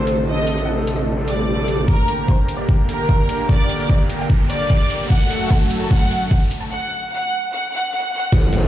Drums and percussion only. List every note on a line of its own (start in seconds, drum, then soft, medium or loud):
0.07 closed hi-hat medium
0.47 closed hi-hat medium
0.58 closed hi-hat soft
0.87 closed hi-hat medium
1.28 closed hi-hat medium
1.68 closed hi-hat medium
1.88 kick loud
2.08 closed hi-hat medium
2.28 kick loud
2.48 closed hi-hat medium
2.69 kick loud
2.89 closed hi-hat medium
3.09 kick loud
3.29 closed hi-hat medium
3.49 kick loud
3.69 closed hi-hat medium
3.80 closed hi-hat soft
3.89 kick medium
4.10 closed hi-hat medium
4.30 kick loud
4.50 closed hi-hat medium
4.70 kick loud
4.90 closed hi-hat medium
5.10 kick loud
5.30 closed hi-hat medium
5.51 kick loud
5.71 closed hi-hat medium
5.91 kick loud
6.11 closed hi-hat medium
6.31 kick loud
6.51 closed hi-hat medium
8.32 kick loud
8.32 crash loud
8.53 closed hi-hat medium